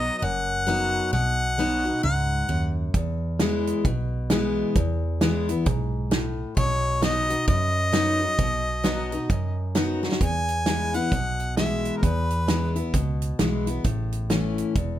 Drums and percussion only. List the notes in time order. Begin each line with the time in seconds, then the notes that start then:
2.94 kick, closed hi-hat
3.39 snare, closed hi-hat
3.67 closed hi-hat
3.85 kick, closed hi-hat
4.30 snare, closed hi-hat
4.75 kick, closed hi-hat
5.21 snare, closed hi-hat
5.49 closed hi-hat
5.66 kick, closed hi-hat
6.12 snare, closed hi-hat
6.57 kick, closed hi-hat
7.02 snare, closed hi-hat
7.30 closed hi-hat
7.48 kick, closed hi-hat
7.93 snare, closed hi-hat
8.39 kick, closed hi-hat
8.84 snare, closed hi-hat
9.12 closed hi-hat
9.30 kick, closed hi-hat
9.75 snare, closed hi-hat
10.03 snare
10.12 snare
10.21 kick, closed hi-hat
10.48 closed hi-hat
10.66 snare, closed hi-hat
10.94 closed hi-hat
11.12 kick, closed hi-hat
11.40 closed hi-hat
11.57 snare, closed hi-hat
11.85 closed hi-hat
12.03 kick, closed hi-hat
12.30 closed hi-hat
12.48 snare, closed hi-hat
12.76 closed hi-hat
12.94 kick, closed hi-hat
13.22 closed hi-hat
13.39 snare, closed hi-hat
13.67 closed hi-hat
13.85 kick, closed hi-hat
14.12 closed hi-hat
14.30 snare, closed hi-hat
14.58 closed hi-hat
14.75 kick, closed hi-hat